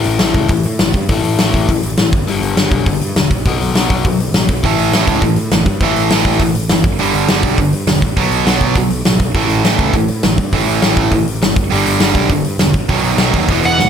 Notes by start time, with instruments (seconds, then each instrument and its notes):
Already playing: overdriven electric guitar A2 E3 A3
0.04 picked electric bass A1, open hi-hat
0.19 picked electric bass A1, overdriven electric guitar A2 E3 A3, snare, open hi-hat
0.34 picked electric bass C#2, kick, open hi-hat
0.48 picked electric bass A1, overdriven electric guitar A2 E3, kick, open hi-hat
0.63 picked electric bass A2, open hi-hat
0.79 picked electric bass G1, overdriven electric guitar A2 E3, snare, open hi-hat
0.93 picked electric bass G2, kick, open hi-hat
1.08 picked electric bass A1, overdriven electric guitar A2 E3 A3, kick, open hi-hat
1.24 picked electric bass A1, open hi-hat
1.38 picked electric bass A1, overdriven electric guitar A2 E3 A3, snare, open hi-hat
1.53 picked electric bass A1, kick, open hi-hat
1.69 picked electric bass A1, overdriven electric guitar A2 E3, kick, open hi-hat
1.83 picked electric bass A1, open hi-hat
1.97 picked electric bass A1, overdriven electric guitar A2 E3, snare, open hi-hat
2.12 picked electric bass G1, kick, open hi-hat
2.27 picked electric bass G1, overdriven electric guitar G2 D3 G3, open hi-hat
2.42 picked electric bass G1, open hi-hat
2.56 picked electric bass G1, overdriven electric guitar G2 D3 G3, snare, open hi-hat
2.71 picked electric bass B1, kick, open hi-hat
2.86 picked electric bass G1, overdriven electric guitar G2 D3, kick, open hi-hat
3.01 picked electric bass G2, open hi-hat
3.16 picked electric bass E1, overdriven electric guitar G2 D3, snare, open hi-hat
3.30 picked electric bass A#1, kick, open hi-hat
3.45 picked electric bass B1, overdriven electric guitar B2 F#3 B3, kick, open hi-hat
3.60 picked electric bass B1, open hi-hat
3.74 picked electric bass B1, overdriven electric guitar B2 F#3 B3, snare, open hi-hat
3.90 picked electric bass B1, kick, open hi-hat
4.05 picked electric bass B1, overdriven electric guitar B2 F#3, kick, open hi-hat
4.19 picked electric bass B1, open hi-hat
4.31 picked electric bass A1, overdriven electric guitar B2 F#3, snare, open hi-hat
4.49 picked electric bass B1, kick, open hi-hat
4.63 picked electric bass A1, overdriven electric guitar A2 E3 A3, kick, open hi-hat
4.77 picked electric bass A1, open hi-hat
4.92 picked electric bass A1, overdriven electric guitar A2 E3 A3, snare, open hi-hat
5.07 picked electric bass C#2, kick, open hi-hat
5.21 picked electric bass A1, overdriven electric guitar A2 E3, kick, open hi-hat
5.36 picked electric bass A2, open hi-hat
5.51 picked electric bass G1, overdriven electric guitar A2 E3, snare, open hi-hat
5.66 picked electric bass G2, kick, open hi-hat
5.80 picked electric bass A1, overdriven electric guitar A2 E3 A3, kick, open hi-hat
5.96 picked electric bass A1, open hi-hat
6.10 picked electric bass A1, overdriven electric guitar A2 E3 A3, snare, open hi-hat
6.25 picked electric bass A1, kick, open hi-hat
6.39 picked electric bass A1, overdriven electric guitar A2 E3, kick, open hi-hat
6.55 picked electric bass A1, open hi-hat
6.69 picked electric bass G1, overdriven electric guitar A2 E3, snare, open hi-hat
6.84 picked electric bass G1, kick, open hi-hat
6.99 picked electric bass G1, overdriven electric guitar G2 D3 G3, open hi-hat
7.14 picked electric bass G1, open hi-hat
7.28 picked electric bass G1, overdriven electric guitar G2 D3 G3, snare, open hi-hat
7.43 picked electric bass B1, kick, open hi-hat
7.57 picked electric bass G1, overdriven electric guitar G2 D3, kick, open hi-hat
7.73 picked electric bass G2, open hi-hat
7.87 picked electric bass E1, overdriven electric guitar G2 D3, snare, open hi-hat
8.02 picked electric bass A1, kick, open hi-hat
8.16 picked electric bass B1, overdriven electric guitar B2 F#3 B3, kick, open hi-hat
8.31 picked electric bass B1, open hi-hat
8.46 picked electric bass B1, overdriven electric guitar B2 F#3 B3, snare, open hi-hat
8.61 picked electric bass B1, kick, open hi-hat
8.75 picked electric bass B1, overdriven electric guitar B2 F#3, kick, open hi-hat
8.90 picked electric bass B1, open hi-hat
9.05 picked electric bass A1, overdriven electric guitar B2 F#3, snare, open hi-hat
9.19 picked electric bass B1, kick, open hi-hat
9.34 picked electric bass A1, overdriven electric guitar A2 E3 A3, kick, open hi-hat
9.49 picked electric bass A1, open hi-hat
9.64 picked electric bass A1, overdriven electric guitar A2 E3 A3, snare, open hi-hat
9.79 picked electric bass C#2, kick, open hi-hat
9.93 picked electric bass A1, overdriven electric guitar A2 E3, kick, open hi-hat
10.08 picked electric bass A2, open hi-hat
10.23 picked electric bass G1, overdriven electric guitar A2 E3, snare, open hi-hat
10.38 picked electric bass G2, kick, open hi-hat
10.53 picked electric bass A1, overdriven electric guitar A2 E3 A3, kick, open hi-hat
10.68 picked electric bass A1, open hi-hat
10.82 picked electric bass A1, overdriven electric guitar A2 E3 A3, snare, open hi-hat
10.96 picked electric bass A1, kick, open hi-hat
11.11 picked electric bass A1, overdriven electric guitar A2 E3, kick, open hi-hat
11.26 picked electric bass A1, open hi-hat
11.42 picked electric bass G1, overdriven electric guitar A2 E3, snare, open hi-hat
11.55 picked electric bass G1, kick, open hi-hat
11.72 picked electric bass G1, overdriven electric guitar G2 D3 G3, open hi-hat
11.86 picked electric bass G1, open hi-hat
11.99 picked electric bass G1, overdriven electric guitar G2 D3 G3, snare, open hi-hat
12.14 picked electric bass B1, kick, open hi-hat
12.29 picked electric bass G1, overdriven electric guitar G2 D3, kick, open hi-hat
12.43 picked electric bass G2, open hi-hat
12.58 picked electric bass E1, overdriven electric guitar G2 D3, snare, open hi-hat
12.73 picked electric bass A1, kick, open hi-hat
12.88 picked electric bass B1, overdriven electric guitar B2 F#3 B3, distorted electric guitar D#3, kick, open hi-hat
13.03 picked electric bass B1, open hi-hat
13.17 picked electric bass B1, overdriven electric guitar B2, distorted electric guitar D#3, snare, open hi-hat
13.21 overdriven electric guitar F#3 B3
13.33 picked electric bass D#2, kick, open hi-hat
13.48 picked electric bass E1, overdriven electric guitar E2 B2 E3, distorted electric guitar G#3 B3, kick, open hi-hat
13.63 picked electric bass E1, lead electric guitar F#5, open hi-hat
13.78 picked electric bass D2, overdriven electric guitar E2 B2, distorted electric guitar E3 G#3, snare